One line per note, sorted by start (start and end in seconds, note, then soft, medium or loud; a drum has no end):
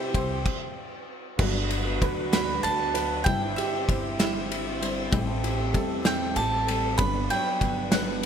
0.00 0.42 C2 medium
0.00 0.42 C3 medium
0.00 0.45 G3 medium
0.00 0.42 C4 medium
0.00 0.46 C4 medium
0.00 0.12 C4 soft
0.00 0.13 E4 soft
0.00 0.42 E4 medium
0.00 0.46 E4 medium
0.00 0.14 G4 medium
0.00 0.42 G4 medium
0.00 0.46 G4 medium
0.00 0.13 C5 loud
0.00 0.46 C5 loud
0.00 0.46 C5 medium
0.00 0.46 E5 medium
0.00 0.74 G5 medium
0.12 0.43 C2 medium
0.12 0.44 G3 medium
0.12 0.45 C4 medium
0.12 0.45 E4 medium
0.12 0.46 G4 medium
0.12 0.46 C5 medium
0.12 kick medium
0.12 ride medium
0.46 kick loud
0.46 crash medium
1.37 1.97 G1 loud
1.37 3.23 G1 medium
1.37 1.55 G2 medium
1.37 3.23 G2 medium
1.37 5.08 D3 medium
1.37 1.55 D3 medium
1.37 1.55 F#3 loud
1.37 3.22 G3 medium
1.37 1.55 B3 loud
1.37 3.23 D4 medium
1.37 1.55 D4 medium
1.37 3.23 F#4 medium
1.37 2.31 F#4 loud
1.37 3.23 F#4 medium
1.37 3.23 B4 medium
1.37 1.54 B4 loud
1.37 kick loud
1.37 crash loud
1.42 3.24 B4 medium
1.42 3.24 D5 medium
1.55 1.86 F#3 medium
1.55 1.85 B3 medium
1.55 1.85 D4 medium
1.55 1.84 B4 medium
1.71 ride medium
1.85 2.00 F#3 medium
1.85 2.01 B3 medium
1.85 2.01 D4 medium
1.85 2.01 B4 medium
2.01 2.60 D2 medium
2.01 2.32 F#3 medium
2.01 2.32 B3 medium
2.01 2.32 D4 medium
2.01 2.93 B4 medium
2.01 2.33 B4 medium
2.01 kick medium
2.01 ride medium
2.32 2.48 G2 medium
2.32 2.48 D3 medium
2.32 2.48 F#3 medium
2.32 2.48 B3 loud
2.32 2.49 D4 medium
2.32 3.26 F#4 medium
2.32 2.48 B4 loud
2.32 2.63 B5 loud
2.32 snare loud
2.32 ride medium
2.49 2.81 F#3 soft
2.49 2.80 B3 soft
2.49 2.79 D4 soft
2.49 2.78 B4 medium
2.63 3.28 D2 medium
2.63 3.24 A5 loud
2.63 ride medium
2.79 2.94 F#3 soft
2.79 2.95 B3 medium
2.79 2.95 D4 medium
2.79 2.95 B4 medium
2.94 3.26 F#3 medium
2.94 3.27 B3 medium
2.94 3.27 D4 medium
2.94 3.26 B4 loud
2.94 3.27 B4 medium
2.94 ride medium
3.24 3.55 G1 loud
3.24 5.09 G1 medium
3.24 5.09 G2 medium
3.24 5.08 G3 medium
3.24 3.42 G3 loud
3.24 5.09 C4 medium
3.24 6.96 C4 medium
3.24 4.18 E4 medium
3.24 5.09 E4 medium
3.24 5.11 E4 medium
3.24 5.10 C5 medium
3.24 3.57 G5 loud
3.24 kick loud
3.24 ride medium
3.28 3.42 C4 medium
3.28 3.42 E4 loud
3.28 3.41 G4 medium
3.28 5.10 E5 medium
3.42 3.74 C4 medium
3.42 3.73 E4 medium
3.42 3.72 G4 medium
3.56 4.82 G4 medium
3.56 4.18 E5 loud
3.56 ride medium
3.74 3.88 C4 medium
3.74 3.89 E4 medium
3.74 3.89 G4 medium
3.88 5.09 G1 medium
3.88 4.18 G3 medium
3.88 4.19 C4 medium
3.88 4.20 E4 medium
3.88 4.20 G4 medium
3.88 4.80 C5 medium
3.88 kick medium
3.88 ride medium
4.19 4.35 G3 medium
4.19 4.35 C4 medium
4.19 5.13 E4 loud
4.19 4.35 E4 medium
4.19 4.34 G4 loud
4.19 4.85 E5 medium
4.19 snare loud
4.19 ride medium
4.35 4.67 C4 soft
4.35 4.66 E4 soft
4.35 4.65 G4 medium
4.52 ride medium
4.66 4.81 C4 medium
4.66 4.82 E4 medium
4.66 4.82 G4 medium
4.81 5.11 G3 medium
4.81 5.11 C4 medium
4.81 5.12 E4 medium
4.81 5.13 G4 medium
4.81 5.13 C5 loud
4.81 ride medium
5.11 5.71 A1 loud
5.11 6.96 A1 medium
5.11 5.27 A2 loud
5.11 6.95 A2 medium
5.11 5.28 E3 loud
5.11 6.95 G3 medium
5.11 5.28 G3 loud
5.11 6.97 A3 medium
5.11 6.95 C4 medium
5.11 5.27 C4 loud
5.11 6.04 C4 loud
5.11 6.96 E4 medium
5.11 5.27 E4 loud
5.11 6.98 G4 medium
5.11 6.96 A4 medium
5.11 5.26 A4 loud
5.11 6.97 E5 loud
5.11 kick loud
5.11 ride medium
5.27 5.60 G3 medium
5.27 5.59 C4 medium
5.27 5.58 E4 medium
5.27 5.57 A4 medium
5.44 6.35 G4 medium
5.44 ride medium
5.58 5.71 G3 medium
5.58 5.73 C4 medium
5.58 5.73 E4 medium
5.58 5.74 A4 medium
5.72 6.33 E2 medium
5.72 6.03 G3 medium
5.72 6.03 C4 medium
5.72 6.03 E4 medium
5.72 6.66 A4 loud
5.72 6.03 A4 medium
5.72 kick medium
5.72 ride medium
6.03 6.20 A2 medium
6.03 6.21 E3 medium
6.03 6.21 G3 medium
6.03 6.21 C4 loud
6.03 6.99 C4 loud
6.03 6.19 E4 loud
6.03 6.19 A4 loud
6.03 6.36 G5 medium
6.03 snare loud
6.03 ride medium
6.20 6.51 G3 soft
6.20 6.51 C4 soft
6.20 6.50 E4 medium
6.20 6.49 A4 medium
6.36 7.00 A1 loud
6.36 6.99 G4 medium
6.36 6.97 A5 loud
6.36 ride medium
6.50 6.66 G3 soft
6.50 6.66 C4 medium
6.50 6.68 E4 medium
6.50 6.67 A4 medium
6.67 6.99 G3 medium
6.67 6.99 C4 medium
6.67 7.00 E4 medium
6.67 6.99 A4 medium
6.67 7.00 A4 medium
6.67 ride medium
6.97 7.28 G1 medium
6.97 8.26 G1 medium
6.97 7.15 G2 medium
6.97 8.26 G2 medium
6.97 7.15 D3 medium
6.97 7.15 F#3 loud
6.97 8.26 G3 medium
6.97 8.26 B3 medium
6.97 7.91 B3 loud
6.97 7.14 B3 loud
6.97 8.26 D4 medium
6.97 7.13 D4 loud
6.97 8.26 B4 medium
6.97 7.12 B4 loud
6.97 8.26 D5 medium
6.97 7.30 B5 loud
6.97 kick loud
6.97 ride medium
7.14 7.46 F#3 soft
7.14 7.45 B3 medium
7.14 7.44 D4 medium
7.14 7.43 B4 medium
7.30 8.26 F#3 medium
7.30 7.91 G5 loud
7.30 ride medium
7.44 7.59 F#3 soft
7.44 7.61 B3 medium
7.44 7.61 D4 medium
7.44 7.61 B4 medium
7.61 8.26 G1 medium
7.61 7.92 F#3 medium
7.61 7.93 B3 medium
7.61 7.93 D4 medium
7.61 7.93 B4 medium
7.61 kick medium
7.61 ride medium
7.92 8.08 G2 medium
7.92 8.08 D3 medium
7.92 8.08 F#3 loud
7.92 8.26 B3 medium
7.92 8.08 B3 medium
7.92 8.07 D4 medium
7.92 8.06 B4 loud
7.92 8.26 F#5 medium
7.92 snare loud
7.92 ride medium
8.07 8.26 F#3 soft
8.07 8.26 B3 soft
8.07 8.26 D4 medium
8.07 8.26 B4 medium